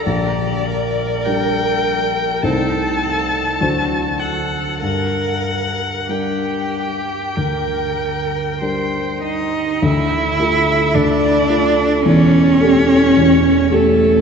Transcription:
0.05 1.22 A#1 soft
0.05 0.68 G4 soft
0.05 1.27 D5 medium
0.66 2.46 A#4 medium
1.25 2.39 G3 soft
1.25 2.39 D4 soft
1.25 2.39 D5 soft
1.25 2.44 G5 medium
2.42 3.56 C2 soft
2.42 3.56 A3 soft
2.42 3.56 D#4 soft
2.42 3.62 A4 medium
2.42 3.57 C5 soft
2.42 4.21 A5 medium
3.60 4.78 D2 soft
3.60 4.77 F#3 soft
3.60 4.78 D4 soft
3.60 4.22 F#4 soft
3.60 4.78 C5 soft
4.20 4.81 A4 soft
4.20 4.81 F#5 medium
4.81 6.06 G2 soft
4.81 5.94 A#4 soft
4.81 6.12 F#5 medium
6.09 7.32 G3 soft
6.09 7.33 D4 soft
6.09 7.37 G4 soft
6.09 7.33 A#4 soft
6.09 9.23 G5 soft
7.36 8.58 D2 soft
7.36 8.61 A#4 soft
8.61 9.79 G3 soft
8.61 9.79 D4 soft
8.61 9.79 A#4 soft
8.61 9.22 C5 soft
9.22 9.85 D#4 medium
9.22 9.84 D#5 soft
9.82 10.37 D2 medium
9.82 10.38 D3 soft
9.82 10.96 E4 medium
9.82 10.96 E5 medium
10.39 10.91 A3 soft
10.39 10.91 F4 soft
10.39 10.92 A4 soft
10.94 11.49 D2 soft
10.94 11.49 D3 medium
10.94 12.05 D4 medium
10.94 12.07 D5 medium
11.49 12.02 A3 soft
11.49 12.02 F4 soft
11.49 12.02 A4 soft
12.05 12.60 E1 medium
12.05 12.60 E2 medium
12.05 13.68 C#4 medium
12.05 13.73 C#5 medium
12.61 13.13 A3 soft
12.61 13.13 G4 soft
12.61 13.13 A4 soft
13.17 13.70 E1 medium
13.17 13.70 E2 medium
13.71 14.21 A3 medium
13.71 14.21 A3 soft
13.71 14.21 G4 soft
13.71 14.21 A4 medium

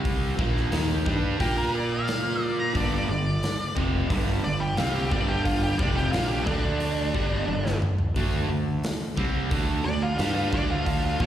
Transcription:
0.00 0.35 C2 medium
0.00 0.37 C3 medium
0.00 0.38 G3 medium
0.00 0.38 C4 loud
0.05 kick medium
0.05 open hi-hat medium
0.38 0.70 A#1 medium
0.38 0.71 A#2 medium
0.38 0.71 F3 loud
0.38 0.70 A#3 loud
0.38 kick loud
0.57 snare soft
0.71 1.04 D#2 medium
0.71 1.05 D#3 medium
0.71 1.05 A#3 medium
0.71 1.05 D#4 medium
0.71 snare loud
0.71 open hi-hat medium
1.05 1.38 G2 medium
1.05 1.38 G3 medium
1.05 1.39 D4 medium
1.05 1.39 G4 medium
1.05 kick loud
1.39 2.71 A#2 medium
1.39 2.74 A#3 medium
1.39 2.74 F4 medium
1.39 1.57 G4 medium
1.39 2.74 A#4 loud
1.39 kick loud
1.39 open hi-hat medium
1.58 1.74 A#4 medium
1.75 1.91 D5 loud
1.93 2.46 F5 medium
2.08 snare loud
2.08 open hi-hat medium
2.46 2.57 D5 medium
2.60 2.75 A#5 medium
2.75 3.06 G1 medium
2.75 3.08 G2 medium
2.75 3.08 D3 medium
2.75 3.08 G3 medium
2.75 2.92 D5 medium
2.75 kick medium
2.75 open hi-hat soft
2.94 3.08 D5 medium
3.09 3.40 G1 medium
3.09 3.36 G2 medium
3.09 3.36 D3 medium
3.09 3.75 D5 medium
3.43 snare loud
3.43 open hi-hat medium
3.76 4.08 F1 loud
3.76 4.09 F2 medium
3.76 4.09 C3 medium
3.76 4.09 F3 medium
3.76 kick loud
4.10 4.42 G1 loud
4.10 4.43 G2 medium
4.10 4.43 D3 loud
4.10 4.43 G3 loud
4.10 kick loud
4.10 open hi-hat medium
4.44 4.76 G1 medium
4.44 4.71 G2 medium
4.44 4.71 D3 medium
4.44 4.61 D5 loud
4.60 4.77 G4 medium
4.77 5.09 C2 medium
4.77 5.11 C3 medium
4.77 5.11 G3 loud
4.77 5.11 C4 loud
4.77 4.95 F4 medium
4.77 snare loud
4.77 open hi-hat medium
4.95 5.11 G4 medium
5.11 5.75 G1 medium
5.11 5.78 G2 medium
5.11 5.78 D3 medium
5.11 5.78 G3 medium
5.11 5.28 D5 loud
5.11 kick loud
5.29 5.45 G4 medium
5.45 5.62 F4 medium
5.45 kick medium
5.45 open hi-hat medium
5.63 5.79 G4 medium
5.78 6.11 F1 medium
5.78 6.12 F2 medium
5.78 6.12 C3 medium
5.78 6.12 F3 loud
5.78 5.95 D5 loud
5.78 kick loud
5.96 6.12 G4 medium
5.96 snare soft
6.12 6.44 A#1 medium
6.12 6.46 A#2 medium
6.12 6.47 F3 loud
6.12 6.47 A#3 loud
6.12 6.28 F4 medium
6.12 snare loud
6.12 open hi-hat medium
6.28 6.45 G4 medium
6.44 7.11 D2 medium
6.44 7.13 D3 medium
6.44 7.13 A3 medium
6.44 7.77 D4 loud
6.44 7.14 D4 loud
6.44 kick loud
6.80 open hi-hat medium
7.14 7.46 G1 medium
7.14 7.47 G2 loud
7.14 7.47 D3 medium
7.14 7.47 G3 loud
7.14 kick medium
7.48 7.80 G1 medium
7.48 7.75 G2 medium
7.48 7.75 D3 medium
7.48 high tom medium
7.66 snare medium
7.82 mid tom medium
7.98 floor tom medium
8.16 8.47 D2 medium
8.16 8.49 D3 medium
8.16 8.49 A3 medium
8.16 8.49 D4 medium
8.16 kick loud
8.16 open hi-hat medium
8.50 8.81 D2 medium
8.50 8.77 D3 medium
8.50 8.77 A3 medium
8.84 snare loud
8.84 open hi-hat medium
9.17 9.49 C2 medium
9.17 9.50 C3 medium
9.17 9.50 G3 loud
9.17 9.50 C4 medium
9.17 kick loud
9.51 9.83 D2 medium
9.51 9.84 D3 medium
9.51 9.84 A3 medium
9.51 9.84 D4 loud
9.51 kick loud
9.51 open hi-hat medium
9.85 10.16 D2 medium
9.85 10.12 D3 medium
9.85 10.13 A3 medium
9.85 10.01 D5 loud
10.02 10.17 F4 medium
10.18 10.50 G2 loud
10.18 10.52 G3 medium
10.18 10.52 D4 medium
10.18 10.34 F4 medium
10.18 10.52 G4 medium
10.18 snare loud
10.18 open hi-hat medium
10.35 10.52 F4 medium
10.53 11.16 D2 medium
10.53 11.19 D3 medium
10.53 11.19 A3 medium
10.53 11.19 D4 medium
10.53 10.70 D5 medium
10.53 kick loud
10.71 10.86 F4 loud
10.86 11.03 F4 medium
10.86 kick loud
10.86 open hi-hat medium
11.05 11.21 F4 medium
11.20 11.26 A#1 medium
11.20 11.26 A#2 medium
11.20 11.26 F3 medium
11.20 11.26 A#3 loud
11.20 11.26 D5 loud
11.20 kick loud

